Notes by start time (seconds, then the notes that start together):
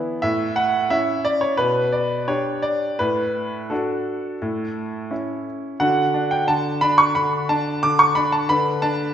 Already playing: E3 B3 E4
0.22 A2 E5
0.56 F#5
0.90 C#4 E4 E5
1.25 D5
1.41 C#5
1.57 B2 B4
1.92 D5
2.28 D4 G4 C#5
2.62 D5
2.99 A2 B4
3.70 D4 F#4 A4
4.42 A2
5.11 C#4 E4
5.80 D3 D4 F#4 F#5
6.14 D4
6.31 G5
6.48 D3 A5
6.81 D4 B5
6.98 C#6
7.15 D3 B5
7.49 D4 A5
7.83 D3 D6
7.99 C#6
8.15 D4 B5
8.32 A5
8.49 D3 D4 B4 B5
8.82 D4 A5